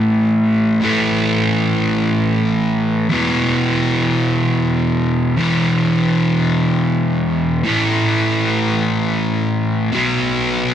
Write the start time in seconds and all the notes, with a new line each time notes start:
Already playing: A2 E3 A3
0.81 A2 E3 A3
3.09 E2 B2 E3
5.37 E2 B2 E3
7.64 A2 E3 A3
9.92 B2 F#3
9.96 B3